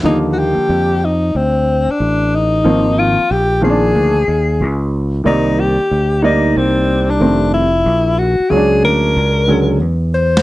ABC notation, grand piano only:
X:1
M:4/4
L:1/8
Q:"Swing 16ths" 1/4=92
K:Eb
V:1 name="Grand piano" clef=bass
[D,F,G,B,]3 z4 z | [E,F,B,C] z2 [E,F,B,CD] z4 | [E,G,B,d] z2 [G,B,Ed]3 [E,G,=A,C] z | z2 [^C,^F,A,^CD]3 [D,F,A,C] z2 |]